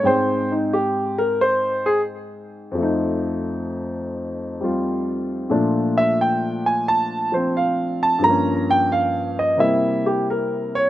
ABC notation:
X:1
M:4/4
L:1/8
Q:"Swing" 1/4=88
K:Bbdor
V:1 name="Grand piano"
c E G B c A z2 | z8 | z =e g a =a c f a | b g f e =e G B d |]
V:2 name="Grand piano"
[A,,A,Cg]8 | [F,,F,=A,E]4- [F,,F,A,E] [G,CF]3 | [B,,F,=A,=D]4- [B,,F,A,D] [F,C]3 | [G,,F,B,D]4 [C,G,B,=E]4 |]